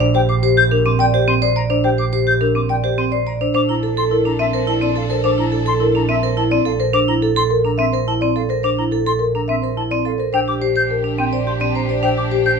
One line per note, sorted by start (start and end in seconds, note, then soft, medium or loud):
0.00 3.39 A#1 medium
0.00 0.19 D4 medium
0.00 0.13 C5 medium
0.14 0.33 G4 medium
0.14 0.33 C5 medium
0.14 0.21 G5 medium
0.29 0.42 C5 medium
0.29 0.35 D6 medium
0.43 0.61 G4 medium
0.43 0.61 C5 medium
0.57 0.76 G4 medium
0.57 0.63 G6 loud
0.71 0.90 D4 medium
0.71 0.90 A#4 medium
0.85 1.04 C4 loud
0.85 0.91 D6 medium
0.99 1.18 D5 loud
0.99 1.18 G5 loud
0.99 1.05 G5 loud
1.14 1.32 G4 medium
1.14 1.32 C5 medium
1.27 1.46 C4 loud
1.27 1.33 C6 medium
1.42 1.60 C5 medium
1.42 1.60 D5 loud
1.56 1.74 D5 medium
1.56 1.62 A#5 medium
1.70 1.88 D4 medium
1.70 1.83 C5 medium
1.84 2.03 G4 medium
1.84 2.03 C5 medium
1.84 1.90 G5 medium
1.98 2.12 C5 medium
1.98 2.04 D6 medium
2.13 2.31 G4 medium
2.13 2.31 C5 medium
2.27 2.45 G4 medium
2.27 2.33 G6 medium
2.41 2.59 D4 medium
2.41 2.59 A#4 medium
2.55 2.73 C4 medium
2.55 2.61 D6 medium
2.69 2.88 D5 medium
2.69 2.75 G5 medium
2.69 2.88 G5 medium
2.84 3.02 G4 medium
2.84 3.02 C5 medium
2.98 3.16 C4 medium
2.98 3.04 C6 medium
3.12 3.30 C5 medium
3.12 3.30 D5 medium
3.26 3.45 D5 medium
3.26 3.32 A#5 medium
3.41 3.53 D4 medium
3.41 3.53 C5 medium
3.54 10.18 A#1 medium
3.54 6.76 D4 medium
3.54 3.73 D4 medium
3.54 6.76 A4 medium
3.54 3.73 C5 medium
3.54 3.61 D6 medium
3.69 3.87 E4 medium
3.69 3.75 A#5 medium
3.83 4.01 A4 medium
3.83 3.96 A4 medium
3.97 4.15 A4 medium
3.97 4.03 C6 medium
4.11 4.29 E4 medium
4.11 4.29 A#4 medium
4.25 4.43 D4 medium
4.25 4.31 A#5 medium
4.39 4.58 C4 medium
4.39 4.58 E5 medium
4.39 4.45 E5 medium
4.53 4.72 A#4 medium
4.53 4.72 C5 medium
4.67 4.86 E4 medium
4.67 4.74 A5 medium
4.82 5.00 C4 medium
4.82 5.00 D5 medium
4.96 5.14 A4 medium
4.96 5.03 F5 medium
5.10 5.28 A#4 medium
5.10 5.23 C5 medium
5.24 5.42 D4 medium
5.24 5.43 C5 medium
5.24 5.31 D6 medium
5.38 5.57 E4 medium
5.38 5.45 A#5 medium
5.52 5.65 A4 medium
5.52 5.71 A4 medium
5.66 5.85 A4 medium
5.66 5.73 C6 medium
5.80 5.99 E4 medium
5.80 5.99 A#4 medium
5.95 6.13 D4 medium
5.95 6.01 A#5 medium
6.09 6.27 C4 loud
6.09 6.15 E5 medium
6.09 6.27 E5 medium
6.23 6.41 A#4 medium
6.23 6.42 C5 medium
6.37 6.56 E4 medium
6.37 6.43 A5 medium
6.51 6.70 C4 loud
6.51 6.70 D5 loud
6.65 6.84 A4 medium
6.65 6.71 F5 medium
6.80 6.98 A#4 medium
6.80 6.92 C5 medium
6.93 7.12 D4 loud
6.93 7.12 C5 loud
6.93 6.99 D6 medium
7.08 7.26 E4 medium
7.08 7.14 A#5 medium
7.22 7.41 A4 medium
7.22 7.35 A4 medium
7.36 7.55 A4 loud
7.36 7.42 C6 loud
7.51 7.69 A#4 medium
7.64 7.83 D4 medium
7.64 7.70 A#5 medium
7.78 7.97 C4 loud
7.78 7.97 E5 medium
7.78 7.85 E5 medium
7.93 8.11 A#4 medium
7.93 8.11 C5 medium
8.07 8.26 E4 medium
8.07 8.13 A5 medium
8.21 8.40 C4 medium
8.21 8.40 D5 medium
8.35 8.54 A4 medium
8.35 8.41 F5 medium
8.49 8.68 A#4 medium
8.49 8.62 C5 medium
8.63 8.82 D4 medium
8.63 8.82 C5 medium
8.63 8.70 D6 medium
8.78 8.96 E4 medium
8.78 8.84 A#5 medium
8.92 9.10 A4 medium
8.92 9.05 A4 medium
9.06 9.25 A4 medium
9.06 9.12 C6 medium
9.19 9.38 A#4 medium
9.34 9.53 D4 medium
9.34 9.40 A#5 medium
9.48 9.67 C4 medium
9.48 9.67 E5 medium
9.48 9.55 E5 medium
9.62 9.81 A#4 medium
9.62 9.81 C5 medium
9.76 9.95 E4 medium
9.76 9.82 A5 medium
9.91 10.10 C4 medium
9.91 10.09 D5 medium
10.05 10.24 A4 medium
10.05 10.11 F5 medium
10.18 10.38 A#4 medium
10.18 10.32 C5 medium
10.33 12.60 A#1 medium
10.33 12.60 D4 medium
10.33 10.52 D4 medium
10.33 12.60 G4 medium
10.33 10.52 C5 medium
10.33 10.39 G5 medium
10.48 10.66 G4 medium
10.48 10.54 D6 medium
10.62 10.80 G4 medium
10.62 10.75 C5 medium
10.76 10.94 C5 medium
10.76 10.82 G6 medium
10.91 11.09 A#4 medium
11.04 11.22 D4 medium
11.18 11.37 C4 medium
11.18 11.24 G5 medium
11.18 11.37 G5 medium
11.32 11.51 C5 medium
11.32 11.51 D5 medium
11.46 11.65 G4 medium
11.46 11.52 C6 medium
11.60 11.79 C4 medium
11.60 11.79 D5 medium
11.75 11.93 C5 medium
11.75 11.81 A#5 medium
11.89 12.02 C5 medium
11.89 12.07 D5 medium
12.03 12.22 D4 medium
12.03 12.22 C5 medium
12.03 12.09 G5 medium
12.17 12.36 G4 medium
12.17 12.23 D6 medium
12.31 12.50 G4 medium
12.31 12.45 C5 medium
12.45 12.60 C5 medium
12.45 12.51 G6 medium